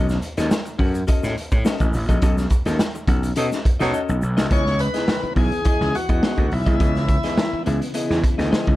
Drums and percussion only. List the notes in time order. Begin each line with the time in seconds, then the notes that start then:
0.09 snare, shaker
0.22 closed hi-hat, shaker
0.37 snare, closed hi-hat, shaker
0.51 snare, shaker
0.66 closed hi-hat, shaker
0.79 kick, open hi-hat
0.95 closed hi-hat, shaker
1.08 kick, closed hi-hat, shaker
1.23 snare, closed hi-hat, shaker
1.38 closed hi-hat
1.51 kick, closed hi-hat, shaker
1.65 snare, shaker
1.79 kick, closed hi-hat, shaker
1.93 open hi-hat, shaker
2.09 kick, closed hi-hat, shaker
2.22 kick, closed hi-hat, shaker
2.37 snare, shaker
2.50 kick, closed hi-hat, shaker
2.65 snare, closed hi-hat, shaker
2.79 snare, shaker
2.95 shaker
3.07 kick, closed hi-hat
3.23 closed hi-hat, shaker
3.36 closed hi-hat, shaker
3.52 snare, shaker
3.65 kick, closed hi-hat
3.80 snare, closed hi-hat, shaker
3.94 shaker
4.09 shaker
4.22 shaker
4.38 snare, shaker
4.51 kick, closed hi-hat
4.66 snare
4.79 closed hi-hat
4.94 snare, closed hi-hat
5.08 snare
5.23 closed hi-hat
5.36 kick, open hi-hat
5.52 closed hi-hat
5.65 kick, closed hi-hat
5.80 snare
5.95 closed hi-hat
6.09 kick, closed hi-hat
6.23 snare
6.37 kick, closed hi-hat
6.51 open hi-hat
6.66 kick, closed hi-hat
6.80 kick, closed hi-hat
6.95 snare, closed hi-hat
7.08 kick, closed hi-hat
7.23 snare, closed hi-hat
7.38 snare
7.66 closed hi-hat
7.82 closed hi-hat
7.94 closed hi-hat
8.10 snare, closed hi-hat
8.24 kick, closed hi-hat
8.39 snare, closed hi-hat
8.53 snare
8.67 kick